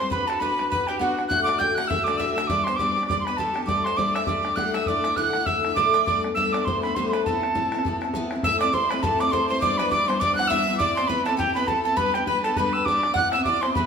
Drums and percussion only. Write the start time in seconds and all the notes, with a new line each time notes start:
0.11 bodhran
0.30 bodhran
0.42 bodhran
0.51 bodhran
0.59 bodhran
0.72 bodhran
0.89 bodhran
1.01 bodhran
1.19 bodhran
1.31 bodhran
1.49 bodhran
1.61 bodhran
1.70 bodhran
1.78 bodhran
1.91 bodhran
2.08 bodhran
2.20 bodhran
2.38 bodhran
2.50 bodhran
2.67 bodhran
2.79 bodhran
2.89 bodhran
3.03 bodhran
3.10 bodhran
3.27 bodhran
3.39 bodhran
3.56 bodhran
3.68 bodhran
3.86 bodhran
3.99 bodhran
4.08 bodhran
4.16 bodhran
4.27 bodhran
4.45 bodhran
4.57 bodhran
4.74 bodhran
4.86 bodhran
5.04 bodhran
5.16 bodhran
5.25 bodhran
5.33 bodhran
5.47 bodhran
5.65 bodhran
5.77 bodhran
5.94 bodhran
6.07 bodhran
6.24 bodhran
6.37 bodhran
6.47 bodhran
6.54 bodhran
6.67 bodhran
6.83 bodhran
6.97 bodhran
7.13 bodhran
7.26 bodhran
7.43 bodhran
7.56 bodhran
7.64 bodhran
7.72 bodhran
7.79 bodhran
7.85 bodhran
8.02 bodhran
8.14 bodhran
8.31 bodhran
8.43 bodhran
8.61 bodhran
8.74 bodhran
8.91 bodhran
9.03 bodhran
9.20 bodhran
9.33 bodhran
9.62 bodhran
9.79 bodhran
9.92 bodhran
10.10 bodhran
10.22 bodhran
10.39 bodhran
10.51 bodhran
10.80 bodhran
10.97 bodhran
11.10 bodhran
11.26 bodhran
11.40 bodhran
11.56 bodhran
11.68 bodhran
11.97 bodhran
12.14 bodhran
12.27 bodhran
12.44 bodhran
12.56 bodhran
12.86 bodhran
13.03 bodhran
13.16 bodhran
13.32 bodhran
13.45 bodhran
13.63 bodhran
13.76 bodhran